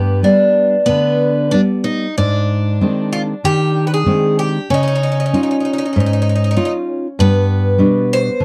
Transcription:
0.00 0.22 G2 medium
0.00 0.85 B3 medium
0.00 0.19 G4 medium
0.23 0.74 G3 soft
0.23 0.75 B3 soft
0.23 0.75 D4 soft
0.23 1.49 D4 medium
0.86 1.51 D3 medium
0.86 1.54 B3 medium
1.51 2.05 G3 soft
1.51 2.05 B3 soft
1.51 1.60 D4 medium
1.51 2.06 D5 soft
1.84 2.17 D#4 medium
2.18 2.80 G#2 medium
2.18 4.67 D4 medium
2.81 3.33 D#3 soft
2.81 3.32 G#3 soft
2.81 3.32 C4 soft
3.13 3.21 F4 medium
3.44 4.05 D#3 medium
3.44 3.87 G4 loud
3.87 3.93 B4 medium
3.94 4.39 G#4 medium
4.06 4.58 D#3 soft
4.06 4.58 G#3 soft
4.06 4.58 C4 soft
4.39 4.69 G4 medium
4.70 5.32 C#3 medium
4.70 7.26 C#4 medium
4.70 4.80 D#4 medium
4.83 4.86 D#4 medium
4.88 4.94 D#4 medium
4.95 5.02 D#4 medium
5.03 5.10 D#4 medium
5.12 5.18 D#4 soft
5.20 5.25 D#4 medium
5.26 5.32 D#4 soft
5.33 5.84 C#4 soft
5.33 5.40 D#4 soft
5.33 5.85 D#4 soft
5.33 5.85 F4 soft
5.43 5.48 D#4 soft
5.51 5.56 D#4 soft
5.60 5.64 D#4 soft
5.65 5.70 D#4 soft
5.73 5.77 D#4 soft
5.78 5.84 D#4 medium
5.86 5.92 D#4 soft
5.93 6.56 G#2 medium
5.93 5.99 D#4 soft
6.00 6.05 D#4 soft
6.06 6.12 D#4 medium
6.13 6.20 D#4 soft
6.22 6.28 D#4 medium
6.29 6.34 D#4 soft
6.36 6.42 D#4 medium
6.44 6.50 D#4 soft
6.51 6.55 D#4 medium
6.57 7.06 C#4 soft
6.57 6.63 D#4 soft
6.57 7.07 D#4 soft
6.57 7.06 F4 soft
6.65 6.71 D#4 medium
7.19 7.78 G2 medium
7.19 8.45 B3 medium
7.78 8.28 B2 soft
7.78 8.28 G3 soft
7.78 8.29 D4 soft
8.13 8.43 C5 medium
8.40 8.45 D3 medium

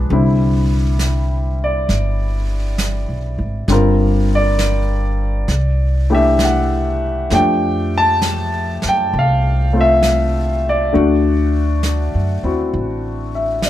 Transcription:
0.00 0.13 F3 soft
0.00 0.10 G#3 soft
0.00 0.11 B3 soft
0.00 0.12 D4 medium
0.00 0.13 B4 medium
0.10 1.85 C2 medium
0.10 3.67 D3 soft
0.10 3.68 G3 soft
0.10 3.68 C4 soft
0.10 3.69 E4 medium
0.10 brush sweep soft
0.99 snare soft
0.99 hi-hat pedal soft
1.64 3.66 D5 medium
1.89 3.04 G1 medium
1.89 brush sweep soft
1.89 snare soft
2.78 snare soft
2.78 hi-hat pedal soft
3.08 3.36 B1 soft
3.38 3.66 G#1 medium
3.68 5.44 G1 medium
3.68 5.48 D3 medium
3.68 5.48 G3 soft
3.68 5.49 C4 soft
3.68 5.49 F4 medium
3.68 brush sweep soft
3.68 snare soft
3.72 4.27 A#4 medium
4.35 6.09 D5 medium
4.59 snare soft
4.59 hi-hat pedal soft
5.48 7.27 C2 medium
5.48 brush sweep soft
5.48 snare soft
6.10 7.31 E3 medium
6.10 7.30 A3 soft
6.10 7.31 D4 soft
6.10 7.30 G4 medium
6.15 6.39 E5 medium
6.39 snare soft
6.39 hi-hat pedal soft
6.45 7.36 F#5 medium
7.30 8.80 F2 medium
7.30 10.94 F3 soft
7.30 9.72 A3 soft
7.30 10.93 D4 soft
7.30 10.94 G4 soft
7.30 brush sweep soft
7.30 snare soft
7.35 7.97 G5 medium
7.98 8.82 A5 loud
8.22 snare soft
8.22 hi-hat pedal soft
8.82 9.11 F#2 medium
8.82 snare soft
8.89 9.13 G5 medium
9.12 10.90 C2 medium
9.12 brush sweep soft
9.19 9.74 F5 medium
9.73 10.92 A3 soft
9.73 10.93 C4 soft
9.73 10.94 F4 soft
9.81 10.71 E5 medium
10.03 snare soft
10.03 hi-hat pedal soft
10.69 12.43 D5 medium
10.93 12.10 D2 medium
10.93 13.70 D3 medium
10.93 13.70 A3 soft
10.93 13.70 D4 soft
10.93 12.45 F#4 medium
10.93 brush sweep soft
11.83 snare soft
11.83 hi-hat pedal soft
12.14 12.42 F#2 medium
12.43 12.71 D#2 medium
12.43 13.70 C4 soft
12.43 13.70 E4 soft
12.43 13.70 F#4 soft
12.74 13.70 A1 medium
12.74 brush sweep soft
13.35 13.70 E5 soft
13.62 13.70 D5 soft
13.62 snare soft
13.62 hi-hat pedal medium

